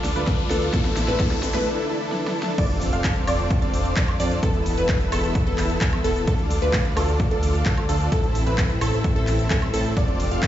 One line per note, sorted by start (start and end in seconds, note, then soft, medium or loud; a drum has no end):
0.00 0.14 D2 loud
0.00 0.13 D4 medium
0.00 0.13 F4 medium
0.00 0.13 A4 loud
0.00 0.70 A4 medium
0.00 0.72 D5 medium
0.00 0.72 F5 medium
0.00 0.72 D6 medium
0.00 riser medium
0.04 snare medium
0.04 open hi-hat loud
0.04 shaker medium
0.15 0.48 D2 loud
0.15 0.47 F3 medium
0.15 0.48 A3 medium
0.15 0.48 D4 medium
0.15 0.48 F4 medium
0.15 0.48 A4 medium
0.15 0.48 B4 medium
0.15 closed hi-hat soft
0.15 shaker soft
0.27 kick loud
0.27 snare medium
0.27 closed hi-hat medium
0.27 shaker soft
0.39 closed hi-hat soft
0.50 0.71 D2 loud
0.50 0.70 F3 medium
0.50 0.71 A3 medium
0.50 0.72 D4 loud
0.50 0.71 D4 medium
0.50 0.72 F4 medium
0.50 0.72 A4 loud
0.50 0.71 B4 medium
0.50 snare medium
0.50 open hi-hat loud
0.50 shaker medium
0.62 closed hi-hat soft
0.62 shaker soft
0.73 1.06 A1 medium
0.73 0.83 E3 medium
0.73 0.83 A3 medium
0.73 1.05 D4 medium
0.73 0.83 D4 medium
0.73 1.05 E4 medium
0.73 1.05 A4 loud
0.73 0.84 A4 loud
0.73 1.65 C5 medium
0.73 1.65 E5 medium
0.73 1.65 A5 medium
0.73 1.65 E6 medium
0.73 kick loud
0.73 snare medium
0.73 closed hi-hat medium
0.73 shaker soft
0.85 snare medium
0.85 closed hi-hat soft
0.97 snare loud
0.97 open hi-hat loud
0.97 shaker medium
1.08 1.17 A1 loud
1.08 1.18 E3 medium
1.08 1.18 A3 medium
1.08 1.18 D4 medium
1.08 1.18 E4 medium
1.08 1.18 A4 medium
1.08 1.18 B4 medium
1.08 snare medium
1.08 closed hi-hat soft
1.08 shaker soft
1.19 1.52 A1 loud
1.19 1.29 E3 medium
1.19 1.29 A3 medium
1.19 1.52 D4 loud
1.19 1.30 D4 medium
1.19 1.52 E4 medium
1.19 1.52 A4 loud
1.19 1.30 A4 loud
1.19 kick loud
1.19 snare loud
1.19 closed hi-hat medium
1.19 shaker soft
1.31 snare medium
1.31 closed hi-hat soft
1.43 snare loud
1.43 open hi-hat loud
1.43 shaker medium
1.54 1.64 A1 loud
1.54 1.64 E3 medium
1.54 1.64 A3 medium
1.54 1.64 D4 medium
1.54 1.64 E4 medium
1.54 1.64 A4 loud
1.54 1.64 B4 medium
1.54 snare medium
1.54 closed hi-hat soft
1.54 shaker soft
1.66 1.87 D4 loud
1.66 1.87 E4 medium
1.66 1.87 A4 loud
1.89 2.10 D4 loud
1.89 2.10 E4 medium
1.89 2.10 A4 loud
2.12 2.33 D4 loud
2.12 2.33 E4 medium
2.12 2.33 A4 loud
2.12 snare medium
2.27 snare medium
2.35 2.56 D4 loud
2.35 2.56 E4 medium
2.35 2.56 A4 loud
2.43 snare loud
2.58 2.91 F1 medium
2.58 2.90 F4 medium
2.58 2.90 A4 medium
2.58 4.41 C5 medium
2.58 2.90 D5 loud
2.58 4.41 F5 medium
2.58 6.24 A5 medium
2.58 4.41 D6 medium
2.58 kick loud
2.58 closed hi-hat medium
2.58 crash loud
2.58 impact medium
2.58 shaker soft
2.70 closed hi-hat soft
2.81 open hi-hat loud
2.81 shaker medium
2.93 3.25 F1 loud
2.93 3.25 C4 medium
2.93 3.25 D4 medium
2.93 3.25 F4 medium
2.93 3.25 A4 medium
2.93 3.25 F5 medium
2.93 closed hi-hat soft
2.93 shaker soft
3.04 kick loud
3.04 clap loud
3.04 closed hi-hat medium
3.04 shaker soft
3.16 closed hi-hat soft
3.27 3.60 F1 medium
3.27 3.59 C4 medium
3.27 3.59 D4 medium
3.27 3.59 F4 medium
3.27 3.59 A4 medium
3.27 3.59 D5 loud
3.27 open hi-hat loud
3.27 high woodblock medium
3.27 shaker medium
3.39 closed hi-hat soft
3.39 shaker soft
3.51 kick loud
3.51 closed hi-hat loud
3.51 shaker soft
3.62 3.94 F1 loud
3.62 3.94 C4 medium
3.62 3.94 D4 medium
3.62 3.94 F4 medium
3.62 3.94 A4 medium
3.62 3.94 D5 medium
3.62 closed hi-hat soft
3.74 open hi-hat loud
3.74 shaker medium
3.85 closed hi-hat soft
3.85 shaker soft
3.96 4.17 F2 loud
3.96 4.14 D4 medium
3.96 4.14 A4 medium
3.96 4.14 D5 medium
3.96 kick loud
3.96 clap loud
3.96 closed hi-hat loud
3.96 shaker soft
4.08 closed hi-hat soft
4.08 high woodblock medium
4.20 4.41 F2 loud
4.20 4.40 C4 loud
4.20 4.40 D4 medium
4.20 4.40 F4 medium
4.20 4.40 A4 medium
4.20 4.40 D5 loud
4.20 open hi-hat loud
4.20 shaker medium
4.31 closed hi-hat soft
4.31 shaker soft
4.43 4.75 E1 loud
4.43 4.75 B3 loud
4.43 4.75 E4 medium
4.43 4.75 A4 loud
4.43 6.26 B4 medium
4.43 6.26 E5 medium
4.43 6.26 E6 medium
4.43 kick loud
4.43 closed hi-hat medium
4.43 shaker soft
4.54 closed hi-hat soft
4.66 open hi-hat loud
4.66 shaker medium
4.77 5.10 E1 loud
4.77 5.09 B3 medium
4.77 5.09 E4 medium
4.77 5.09 B4 medium
4.77 closed hi-hat soft
4.77 shaker soft
4.89 kick loud
4.89 clap loud
4.89 closed hi-hat medium
4.89 shaker soft
5.01 closed hi-hat soft
5.12 5.44 E1 loud
5.12 5.44 B3 loud
5.12 5.44 E4 medium
5.12 5.44 A4 loud
5.12 open hi-hat loud
5.12 high woodblock medium
5.12 shaker medium
5.24 closed hi-hat soft
5.24 shaker soft
5.35 kick loud
5.35 closed hi-hat medium
5.35 shaker soft
5.47 5.79 E1 loud
5.47 5.79 B3 medium
5.47 5.79 E4 medium
5.47 5.79 A4 medium
5.47 closed hi-hat soft
5.58 clap medium
5.58 open hi-hat loud
5.58 shaker medium
5.70 closed hi-hat soft
5.70 shaker soft
5.81 6.02 E2 medium
5.81 5.99 B3 medium
5.81 5.99 E4 medium
5.81 5.99 A4 medium
5.81 kick loud
5.81 clap loud
5.81 closed hi-hat medium
5.81 shaker soft
5.93 closed hi-hat soft
5.93 high woodblock medium
6.04 6.25 E1 loud
6.04 6.25 B3 loud
6.04 6.25 E4 medium
6.04 6.25 A4 loud
6.04 open hi-hat loud
6.04 shaker medium
6.16 closed hi-hat soft
6.16 shaker soft
6.27 6.60 D2 loud
6.27 6.59 D4 loud
6.27 6.59 F4 medium
6.27 6.59 A4 loud
6.27 10.47 A4 medium
6.27 6.59 A4 loud
6.27 8.10 D5 medium
6.27 8.10 F5 medium
6.27 8.10 D6 medium
6.27 kick loud
6.27 closed hi-hat medium
6.27 shaker soft
6.39 closed hi-hat soft
6.51 open hi-hat loud
6.51 shaker medium
6.62 6.94 D2 loud
6.62 6.94 D4 medium
6.62 6.94 F4 medium
6.62 6.94 B4 medium
6.62 closed hi-hat soft
6.62 shaker soft
6.73 kick loud
6.73 clap loud
6.73 closed hi-hat medium
6.73 shaker soft
6.85 closed hi-hat soft
6.97 7.29 D2 loud
6.97 7.29 D4 medium
6.97 7.29 F4 medium
6.97 7.29 A4 loud
6.97 open hi-hat loud
6.97 high woodblock medium
6.97 shaker medium
7.08 closed hi-hat soft
7.08 shaker soft
7.20 kick loud
7.20 closed hi-hat medium
7.20 shaker soft
7.31 7.64 D2 loud
7.31 7.63 D4 medium
7.31 7.63 F4 medium
7.31 7.63 A4 medium
7.31 closed hi-hat soft
7.43 open hi-hat loud
7.43 shaker medium
7.54 closed hi-hat soft
7.54 shaker soft
7.66 7.87 D2 loud
7.66 7.83 D4 medium
7.66 7.83 A4 medium
7.66 kick loud
7.66 clap loud
7.66 closed hi-hat medium
7.66 shaker soft
7.77 closed hi-hat soft
7.77 high woodblock medium
7.89 8.10 D2 loud
7.89 8.09 D4 medium
7.89 8.09 F4 medium
7.89 8.09 A4 loud
7.89 open hi-hat loud
7.89 shaker medium
8.00 closed hi-hat soft
8.00 shaker soft
8.12 8.44 A1 loud
8.12 8.44 C4 loud
8.12 8.44 E4 medium
8.12 8.44 A4 loud
8.12 9.95 E5 medium
8.12 9.95 E6 medium
8.12 kick loud
8.12 closed hi-hat medium
8.12 shaker soft
8.24 closed hi-hat soft
8.35 open hi-hat loud
8.35 shaker medium
8.47 8.79 A1 medium
8.47 8.79 C4 medium
8.47 8.79 E4 medium
8.47 8.79 B4 medium
8.47 closed hi-hat soft
8.47 shaker soft
8.58 kick loud
8.58 clap loud
8.58 closed hi-hat medium
8.58 shaker soft
8.70 closed hi-hat soft
8.81 9.14 A1 medium
8.81 9.13 C4 medium
8.81 9.13 E4 medium
8.81 9.13 A4 loud
8.81 open hi-hat loud
8.81 high woodblock medium
8.81 shaker medium
8.93 closed hi-hat soft
8.93 shaker soft
9.04 kick loud
9.04 closed hi-hat medium
9.04 shaker soft
9.16 9.48 A1 loud
9.16 9.48 C4 medium
9.16 9.48 E4 medium
9.16 9.48 A4 medium
9.16 closed hi-hat soft
9.27 clap medium
9.27 open hi-hat loud
9.27 shaker medium
9.39 closed hi-hat soft
9.39 shaker soft
9.50 9.71 A1 loud
9.50 9.68 C4 medium
9.50 9.68 A4 medium
9.50 kick loud
9.50 clap loud
9.50 closed hi-hat medium
9.50 shaker soft
9.62 closed hi-hat soft
9.62 high woodblock medium
9.74 9.94 A2 loud
9.74 9.94 C4 loud
9.74 9.94 E4 medium
9.74 9.94 A4 loud
9.74 open hi-hat loud
9.74 shaker medium
9.85 closed hi-hat soft
9.85 shaker soft
9.97 10.29 F1 medium
9.97 10.29 C4 loud
9.97 10.29 D4 medium
9.97 10.29 F4 medium
9.97 10.29 A4 medium
9.97 10.29 D5 loud
9.97 10.47 F5 medium
9.97 10.47 C6 medium
9.97 10.47 D6 medium
9.97 kick loud
9.97 closed hi-hat medium
9.97 shaker soft
10.08 closed hi-hat soft
10.20 open hi-hat loud
10.20 shaker medium
10.31 10.47 F1 loud
10.31 10.47 C4 medium
10.31 10.47 D4 medium
10.31 10.47 F4 medium
10.31 10.47 A4 medium
10.31 10.47 F5 medium
10.31 closed hi-hat soft
10.31 shaker soft
10.43 kick loud
10.43 clap loud
10.43 closed hi-hat medium
10.43 shaker soft